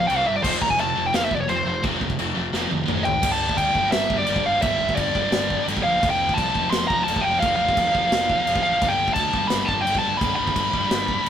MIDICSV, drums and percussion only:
0, 0, Header, 1, 2, 480
1, 0, Start_track
1, 0, Tempo, 348837
1, 607, Time_signature, 4, 2, 24, 8
1, 15536, End_track
2, 0, Start_track
2, 0, Title_t, "Drums"
2, 133, Note_on_c, 9, 52, 60
2, 271, Note_off_c, 9, 52, 0
2, 608, Note_on_c, 9, 36, 112
2, 612, Note_on_c, 9, 49, 106
2, 612, Note_on_c, 9, 52, 62
2, 746, Note_off_c, 9, 36, 0
2, 749, Note_off_c, 9, 49, 0
2, 749, Note_off_c, 9, 52, 0
2, 848, Note_on_c, 9, 36, 89
2, 969, Note_off_c, 9, 36, 0
2, 969, Note_on_c, 9, 36, 82
2, 1087, Note_on_c, 9, 52, 61
2, 1106, Note_off_c, 9, 36, 0
2, 1225, Note_off_c, 9, 52, 0
2, 1570, Note_on_c, 9, 52, 49
2, 1571, Note_on_c, 9, 38, 102
2, 1707, Note_off_c, 9, 52, 0
2, 1709, Note_off_c, 9, 38, 0
2, 1804, Note_on_c, 9, 36, 90
2, 1942, Note_off_c, 9, 36, 0
2, 2048, Note_on_c, 9, 52, 60
2, 2186, Note_off_c, 9, 52, 0
2, 2528, Note_on_c, 9, 52, 62
2, 2529, Note_on_c, 9, 36, 112
2, 2666, Note_off_c, 9, 52, 0
2, 2667, Note_off_c, 9, 36, 0
2, 2769, Note_on_c, 9, 36, 83
2, 2889, Note_off_c, 9, 36, 0
2, 2889, Note_on_c, 9, 36, 89
2, 3010, Note_on_c, 9, 52, 69
2, 3026, Note_off_c, 9, 36, 0
2, 3147, Note_off_c, 9, 52, 0
2, 3490, Note_on_c, 9, 38, 59
2, 3628, Note_off_c, 9, 38, 0
2, 3732, Note_on_c, 9, 48, 70
2, 3869, Note_off_c, 9, 48, 0
2, 3968, Note_on_c, 9, 45, 85
2, 4105, Note_off_c, 9, 45, 0
2, 4202, Note_on_c, 9, 43, 83
2, 4340, Note_off_c, 9, 43, 0
2, 4442, Note_on_c, 9, 49, 66
2, 4442, Note_on_c, 9, 57, 119
2, 4444, Note_on_c, 9, 36, 111
2, 4579, Note_off_c, 9, 49, 0
2, 4579, Note_off_c, 9, 57, 0
2, 4581, Note_off_c, 9, 36, 0
2, 4804, Note_on_c, 9, 36, 90
2, 4923, Note_off_c, 9, 36, 0
2, 4923, Note_on_c, 9, 36, 97
2, 4925, Note_on_c, 9, 49, 64
2, 5060, Note_off_c, 9, 36, 0
2, 5062, Note_off_c, 9, 49, 0
2, 5161, Note_on_c, 9, 36, 87
2, 5299, Note_off_c, 9, 36, 0
2, 5397, Note_on_c, 9, 49, 53
2, 5399, Note_on_c, 9, 38, 113
2, 5535, Note_off_c, 9, 49, 0
2, 5536, Note_off_c, 9, 38, 0
2, 5643, Note_on_c, 9, 36, 96
2, 5780, Note_off_c, 9, 36, 0
2, 5871, Note_on_c, 9, 49, 63
2, 6000, Note_on_c, 9, 36, 92
2, 6008, Note_off_c, 9, 49, 0
2, 6137, Note_off_c, 9, 36, 0
2, 6358, Note_on_c, 9, 49, 65
2, 6365, Note_on_c, 9, 36, 118
2, 6496, Note_off_c, 9, 49, 0
2, 6503, Note_off_c, 9, 36, 0
2, 6727, Note_on_c, 9, 36, 86
2, 6840, Note_on_c, 9, 49, 68
2, 6848, Note_off_c, 9, 36, 0
2, 6848, Note_on_c, 9, 36, 87
2, 6977, Note_off_c, 9, 49, 0
2, 6985, Note_off_c, 9, 36, 0
2, 7089, Note_on_c, 9, 36, 90
2, 7226, Note_off_c, 9, 36, 0
2, 7324, Note_on_c, 9, 49, 58
2, 7325, Note_on_c, 9, 38, 103
2, 7461, Note_off_c, 9, 49, 0
2, 7463, Note_off_c, 9, 38, 0
2, 7573, Note_on_c, 9, 36, 84
2, 7710, Note_off_c, 9, 36, 0
2, 7819, Note_on_c, 9, 49, 63
2, 7936, Note_on_c, 9, 36, 85
2, 7956, Note_off_c, 9, 49, 0
2, 8073, Note_off_c, 9, 36, 0
2, 8297, Note_on_c, 9, 36, 125
2, 8305, Note_on_c, 9, 49, 71
2, 8435, Note_off_c, 9, 36, 0
2, 8443, Note_off_c, 9, 49, 0
2, 8657, Note_on_c, 9, 36, 81
2, 8775, Note_off_c, 9, 36, 0
2, 8775, Note_on_c, 9, 36, 92
2, 8778, Note_on_c, 9, 49, 62
2, 8913, Note_off_c, 9, 36, 0
2, 8916, Note_off_c, 9, 49, 0
2, 9016, Note_on_c, 9, 36, 82
2, 9154, Note_off_c, 9, 36, 0
2, 9253, Note_on_c, 9, 49, 61
2, 9254, Note_on_c, 9, 38, 94
2, 9391, Note_off_c, 9, 49, 0
2, 9392, Note_off_c, 9, 38, 0
2, 9497, Note_on_c, 9, 36, 91
2, 9634, Note_off_c, 9, 36, 0
2, 9740, Note_on_c, 9, 49, 64
2, 9854, Note_on_c, 9, 36, 88
2, 9877, Note_off_c, 9, 49, 0
2, 9992, Note_off_c, 9, 36, 0
2, 10214, Note_on_c, 9, 49, 64
2, 10217, Note_on_c, 9, 36, 113
2, 10352, Note_off_c, 9, 49, 0
2, 10354, Note_off_c, 9, 36, 0
2, 10576, Note_on_c, 9, 36, 92
2, 10689, Note_on_c, 9, 49, 70
2, 10694, Note_off_c, 9, 36, 0
2, 10694, Note_on_c, 9, 36, 94
2, 10827, Note_off_c, 9, 49, 0
2, 10831, Note_off_c, 9, 36, 0
2, 10936, Note_on_c, 9, 36, 85
2, 11073, Note_off_c, 9, 36, 0
2, 11174, Note_on_c, 9, 49, 64
2, 11176, Note_on_c, 9, 38, 104
2, 11312, Note_off_c, 9, 49, 0
2, 11313, Note_off_c, 9, 38, 0
2, 11414, Note_on_c, 9, 36, 84
2, 11552, Note_off_c, 9, 36, 0
2, 11656, Note_on_c, 9, 49, 65
2, 11772, Note_on_c, 9, 36, 92
2, 11793, Note_off_c, 9, 49, 0
2, 11909, Note_off_c, 9, 36, 0
2, 12133, Note_on_c, 9, 36, 118
2, 12133, Note_on_c, 9, 49, 71
2, 12271, Note_off_c, 9, 36, 0
2, 12271, Note_off_c, 9, 49, 0
2, 12490, Note_on_c, 9, 36, 88
2, 12599, Note_on_c, 9, 49, 71
2, 12607, Note_off_c, 9, 36, 0
2, 12607, Note_on_c, 9, 36, 100
2, 12737, Note_off_c, 9, 49, 0
2, 12745, Note_off_c, 9, 36, 0
2, 12845, Note_on_c, 9, 36, 96
2, 12982, Note_off_c, 9, 36, 0
2, 13075, Note_on_c, 9, 49, 52
2, 13076, Note_on_c, 9, 38, 102
2, 13212, Note_off_c, 9, 49, 0
2, 13214, Note_off_c, 9, 38, 0
2, 13327, Note_on_c, 9, 36, 79
2, 13465, Note_off_c, 9, 36, 0
2, 13578, Note_on_c, 9, 49, 66
2, 13691, Note_on_c, 9, 36, 87
2, 13715, Note_off_c, 9, 49, 0
2, 13829, Note_off_c, 9, 36, 0
2, 14053, Note_on_c, 9, 36, 119
2, 14063, Note_on_c, 9, 49, 65
2, 14190, Note_off_c, 9, 36, 0
2, 14200, Note_off_c, 9, 49, 0
2, 14412, Note_on_c, 9, 36, 85
2, 14530, Note_off_c, 9, 36, 0
2, 14530, Note_on_c, 9, 36, 91
2, 14531, Note_on_c, 9, 49, 68
2, 14667, Note_off_c, 9, 36, 0
2, 14668, Note_off_c, 9, 49, 0
2, 14771, Note_on_c, 9, 36, 83
2, 14908, Note_off_c, 9, 36, 0
2, 15012, Note_on_c, 9, 49, 58
2, 15014, Note_on_c, 9, 38, 101
2, 15150, Note_off_c, 9, 49, 0
2, 15151, Note_off_c, 9, 38, 0
2, 15251, Note_on_c, 9, 36, 92
2, 15389, Note_off_c, 9, 36, 0
2, 15536, End_track
0, 0, End_of_file